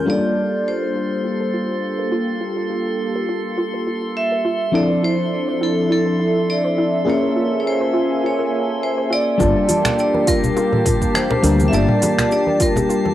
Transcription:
0.00 0.10 C#4 medium
0.06 4.70 G3 medium
0.06 4.70 A#3 medium
0.06 4.69 A#3 medium
0.06 4.70 D4 medium
0.06 4.70 F4 medium
0.06 0.22 F4 medium
0.06 4.71 F4 medium
0.06 4.70 G4 medium
0.06 4.70 A4 medium
0.06 4.71 A4 medium
0.06 9.41 A4 medium
0.06 9.42 C6 medium
0.10 0.69 D5 medium
0.24 0.36 A4 medium
0.37 0.46 F4 medium
0.68 2.09 C5 medium
0.82 0.89 A#4 medium
0.95 1.10 F4 medium
1.24 1.39 F4 medium
1.40 1.53 A4 medium
1.54 1.62 F4 medium
1.99 2.06 A#4 medium
2.11 2.26 F4 medium
2.41 2.55 F4 medium
2.57 2.69 A4 medium
2.70 2.79 F4 medium
3.15 3.22 A#4 medium
3.29 3.43 F4 medium
3.58 3.72 F4 medium
3.74 3.86 A4 medium
3.87 3.95 F4 medium
4.17 4.76 E5 medium
4.32 4.39 A#4 medium
4.45 4.59 F4 medium
4.72 7.03 F3 medium
4.72 7.04 F3 medium
4.72 7.03 C4 medium
4.72 7.04 D4 medium
4.72 7.03 D4 medium
4.72 7.04 E4 medium
4.72 4.88 E4 medium
4.72 7.04 E4 medium
4.72 7.04 A4 medium
4.72 5.04 D5 loud
4.72 9.36 E5 medium
4.90 5.02 A4 medium
5.03 5.12 E4 medium
5.03 5.64 C5 medium
5.48 5.55 C5 medium
5.61 5.76 E4 medium
5.61 5.89 A4 medium
5.90 6.05 E4 medium
5.90 6.51 A4 medium
6.06 6.19 A4 medium
6.19 6.28 E4 medium
6.50 7.09 D5 medium
6.64 6.72 C5 medium
6.78 6.92 E4 loud
7.05 9.36 A#3 medium
7.05 9.37 A#3 medium
7.05 9.37 C#4 medium
7.05 7.21 F4 medium
7.05 9.37 F4 medium
7.05 9.36 G#4 medium
7.05 9.37 A#4 medium
7.05 9.37 G#5 medium
7.10 7.57 C#5 medium
7.23 7.35 A#4 medium
7.36 7.45 F4 medium
7.60 7.66 C#5 medium
7.67 8.26 C5 medium
7.81 7.88 C5 medium
7.93 8.08 F4 medium
8.23 8.38 F4 medium
8.23 8.79 C#5 medium
8.39 8.52 A#4 medium
8.52 8.61 F4 medium
8.83 9.12 C5 medium
8.98 9.05 C5 medium
9.10 9.25 F4 medium
9.10 9.99 D5 loud
9.38 9.52 G1 loud
9.38 11.40 G3 medium
9.38 11.40 A#3 medium
9.38 13.14 A#3 medium
9.38 11.40 D4 medium
9.38 9.54 F4 medium
9.38 11.41 F4 medium
9.38 13.14 G4 medium
9.38 13.14 A5 medium
9.38 11.41 A5 medium
9.38 13.14 C7 medium
9.38 kick loud
9.38 high bongo medium
9.38 cabasa soft
9.56 9.68 A4 medium
9.68 9.77 F4 medium
9.68 open hi-hat medium
9.68 high conga medium
9.68 cabasa medium
9.85 finger snap medium
9.85 high bongo medium
9.85 low conga medium
9.85 cabasa soft
9.99 10.29 D5 loud
9.99 cabasa soft
10.14 10.21 A#4 medium
10.14 high bongo medium
10.14 high conga medium
10.27 10.42 F4 loud
10.27 11.18 A#4 loud
10.27 kick loud
10.27 open hi-hat medium
10.27 cabasa medium
10.44 low conga medium
10.44 cabasa soft
10.56 10.71 F4 medium
10.56 high bongo medium
10.56 cabasa soft
10.72 10.85 A4 medium
10.72 mid tom medium
10.72 high conga medium
10.85 10.94 F4 medium
10.85 kick loud
10.85 mid tom medium
10.85 open hi-hat medium
10.85 high bongo medium
10.85 cabasa medium
11.02 kick medium
11.02 cabasa soft
11.14 11.63 C5 loud
11.14 finger snap medium
11.14 high conga medium
11.14 cabasa soft
11.31 11.38 A#4 medium
11.31 high bongo medium
11.31 low conga medium
11.43 11.67 D2 loud
11.43 11.69 G3 medium
11.43 11.69 A#3 medium
11.43 11.70 D4 medium
11.43 11.58 F4 loud
11.43 11.70 F4 medium
11.43 11.70 A#4 medium
11.43 open hi-hat medium
11.43 cabasa medium
11.60 high bongo medium
11.60 high conga medium
11.60 cabasa soft
11.68 13.14 G3 medium
11.68 13.14 A#3 medium
11.68 13.14 D4 medium
11.68 11.74 E5 medium
11.73 11.85 G1 loud
11.73 11.87 F4 medium
11.73 13.14 F4 medium
11.73 12.31 D5 loud
11.73 13.14 A5 medium
11.73 cabasa soft
11.88 12.01 A4 medium
11.88 mid tom medium
12.02 12.10 F4 medium
12.02 open hi-hat medium
12.02 high bongo medium
12.02 high conga medium
12.02 cabasa medium
12.18 finger snap medium
12.18 low conga medium
12.18 cabasa soft
12.31 12.59 D5 loud
12.31 high bongo medium
12.31 cabasa soft
12.47 12.54 A#4 medium
12.47 high conga medium
12.60 12.74 F4 medium
12.60 13.14 A#4 loud
12.60 kick loud
12.60 open hi-hat medium
12.60 cabasa medium
12.76 high bongo medium
12.76 low conga medium
12.76 cabasa soft
12.89 13.04 F4 medium
12.89 cabasa soft
13.05 13.14 A4 medium
13.05 high bongo medium
13.05 high conga medium

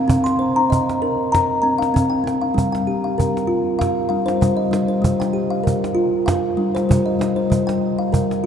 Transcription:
0.00 0.39 F5 medium
0.08 0.39 C4 medium
0.08 cajon bass medium
0.24 0.70 C6 medium
0.24 cajon slap soft
0.39 0.87 C5 medium
0.56 0.87 A#5 medium
0.56 cajon slap soft
0.70 1.18 D#5 medium
0.70 cajon bass soft
0.89 cajon slap soft
1.02 1.33 A#4 medium
1.02 cajon slap soft
1.32 1.61 A#5 medium
1.32 cajon bass soft
1.32 cajon slap soft
1.52 cajon slap soft
1.62 1.92 C4 medium
1.62 2.10 A#5 medium
1.78 2.10 F5 medium
1.78 cajon slap soft
1.94 2.23 C4 medium
1.94 cajon bass soft
2.10 2.55 G5 medium
2.14 cajon slap soft
2.24 2.56 C4 medium
2.24 cajon slap soft
2.41 2.73 F5 medium
2.54 3.75 G3 medium
2.54 cajon bass soft
2.72 3.18 G5 medium
2.72 cajon slap soft
2.87 3.35 G4 medium
3.04 3.35 F5 medium
3.18 3.66 A#4 medium
3.18 cajon bass soft
3.37 cajon slap soft
3.47 3.79 F4 medium
3.67 cajon slap soft
3.79 4.08 F5 medium
3.79 cajon bass soft
3.79 cajon slap soft
4.09 4.40 G3 medium
4.09 4.58 F5 medium
4.26 4.58 C5 medium
4.26 cajon slap soft
4.41 4.70 G3 medium
4.41 cajon bass soft
4.57 5.03 D#5 medium
4.71 5.01 G3 medium
4.71 cajon slap soft
4.88 5.34 C5 medium
5.02 5.34 G3 medium
5.02 cajon bass soft
5.20 5.65 G5 medium
5.20 cajon slap soft
5.33 5.82 G4 medium
5.50 5.82 F5 medium
5.64 6.13 A#4 medium
5.64 cajon bass soft
5.84 cajon slap soft
5.95 6.27 F4 medium
6.15 cajon slap soft
6.26 6.58 F5 medium
6.26 cajon bass medium
6.26 cajon slap soft
6.57 6.87 G3 medium
6.75 7.06 C5 medium
6.75 cajon slap soft
6.89 7.18 G3 medium
6.89 cajon bass medium
7.06 7.51 D#5 medium
7.19 7.49 G3 medium
7.19 cajon slap soft
7.36 7.82 C5 medium
7.50 7.82 G3 medium
7.50 cajon bass soft
7.67 8.13 G5 medium
7.67 cajon slap soft
7.99 8.30 F5 medium
8.13 8.46 A#4 medium
8.13 cajon bass soft
8.31 cajon slap soft

